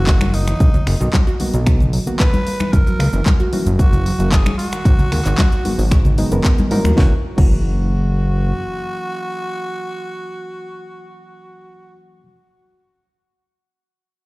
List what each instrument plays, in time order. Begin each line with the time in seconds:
Already playing: analog synth bass F#1, reed electric piano A#3 C#4 F#4, tenor saxophone F#4
0.07 synth arpeggio sound E3, kick, clap, closed hi-hat, cabasa
0.21 synth arpeggio sound F#3, finger snap, high conga, cabasa
0.34 synth arpeggio sound A#3, tenor saxophone D#4, open hi-hat
0.47 synth arpeggio sound E3, finger snap, closed hi-hat, cabasa
0.60 analog synth bass B1, synth arpeggio sound D#3, kick, closed hi-hat, cabasa
0.74 synth arpeggio sound F#3, closed hi-hat, low conga, cabasa
0.87 analog synth bass F#1, synth arpeggio sound A#3, finger snap, open hi-hat
1.01 analog synth bass B1, synth arpeggio sound D#3, closed hi-hat, cabasa
1.13 synth arpeggio sound F#3, kick, clap, closed hi-hat, high conga, cabasa
1.27 synth arpeggio sound F#4, closed hi-hat, cabasa
1.40 analog synth bass B1, reed electric piano D#3 F#3 A#3 B3 F#4, synth arpeggio sound D#3, open hi-hat, high conga
1.54 analog synth bass B1, synth arpeggio sound F#3, closed hi-hat, cabasa
1.67 synth arpeggio sound A#3, finger snap, kick, closed hi-hat, cabasa
1.80 synth arpeggio sound D#3, closed hi-hat, low conga, cabasa
1.93 synth arpeggio sound F#3, open hi-hat
2.06 reed electric piano D#3 F#3 A#3 B3 F#4, synth arpeggio sound A#3, closed hi-hat, cabasa
2.20 synth arpeggio sound D#3, tenor saxophone B4, kick, clap, closed hi-hat, cabasa
2.33 synth arpeggio sound F#3, closed hi-hat, high conga, cabasa
2.47 synth arpeggio sound A#3, open hi-hat
2.60 synth arpeggio sound E3, finger snap, closed hi-hat, high conga, cabasa
2.73 analog synth bass F#1, synth arpeggio sound E3, tenor saxophone A#4, kick, closed hi-hat, cabasa
2.87 synth arpeggio sound F#3, closed hi-hat, cabasa
2.99 analog synth bass C#2, synth arpeggio sound A#3, finger snap, open hi-hat
3.13 analog synth bass F#1, synth arpeggio sound E3, closed hi-hat, cabasa
3.26 synth arpeggio sound F#3, kick, clap, closed hi-hat, high conga, cabasa
3.40 synth arpeggio sound F#4, closed hi-hat, cabasa
3.53 reed electric piano E3 F#3 A#3 C#4 F#4, synth arpeggio sound E3, open hi-hat, high conga
3.66 analog synth bass F#1, synth arpeggio sound F#3, closed hi-hat, cabasa
3.79 synth arpeggio sound A#3, tenor saxophone F#4, kick, closed hi-hat, cabasa
3.93 synth arpeggio sound E3, closed hi-hat, low conga, cabasa
4.06 synth arpeggio sound F#3, open hi-hat
4.19 analog synth bass F#1, reed electric piano E3 F#3 A#3 C#4 F#4, synth arpeggio sound A#3, closed hi-hat, cabasa
4.32 synth arpeggio sound E3, tenor saxophone G#4, kick, clap, closed hi-hat, cabasa
4.46 synth arpeggio sound F#3, finger snap, high conga, cabasa
4.58 synth arpeggio sound G#3, tenor saxophone F#4, open hi-hat
4.72 synth arpeggio sound D#3, finger snap, closed hi-hat, cabasa
4.85 analog synth bass G#1, synth arpeggio sound D#3, kick, closed hi-hat, cabasa
4.99 synth arpeggio sound F#3, closed hi-hat, low conga, cabasa
5.12 analog synth bass D#2, synth arpeggio sound G#3, finger snap, open hi-hat
5.25 analog synth bass G#1, synth arpeggio sound D#3, clap, closed hi-hat, cabasa
5.38 synth arpeggio sound F#3, kick, clap, closed hi-hat, high conga, cabasa
5.52 synth arpeggio sound F#4, closed hi-hat, cabasa
5.65 analog synth bass G#1, reed electric piano D#3 F#3 G#3 B3 F#4, synth arpeggio sound D#3, open hi-hat, high conga
5.79 analog synth bass G#1, synth arpeggio sound F#3, open hi-hat, cabasa
5.91 synth arpeggio sound G#3, finger snap, kick, closed hi-hat, cabasa
6.05 synth arpeggio sound D#3, closed hi-hat, low conga, cabasa
6.18 reed electric piano D#3 F#3 G#3 B3 D#4, synth arpeggio sound G#3, open hi-hat
6.31 analog synth bass F#1, reed electric piano D#3 F#3 G#3 B3 A#4, synth arpeggio sound B3, closed hi-hat, cabasa
6.44 synth arpeggio sound D#3, kick, clap, closed hi-hat, cabasa
6.58 synth arpeggio sound G#3, closed hi-hat, high conga, cabasa
6.71 analog synth bass G#2, reed electric piano E3 F#3 A#3 C#4 A#4, synth arpeggio sound D#4, open hi-hat
6.84 analog synth bass D#2, synth arpeggio sound F#4, finger snap, closed hi-hat, high conga, cabasa
6.96 analog synth bass F#1, reed electric piano E3 F#3 A#3 C#4 F#4, synth arpeggio sound E3, tenor saxophone F#4, kick, snare
7.37 analog synth bass F#1, reed electric piano E3 F#3 A#3 C#4 F#4, synth arpeggio sound E3, tenor saxophone F#4, kick, crash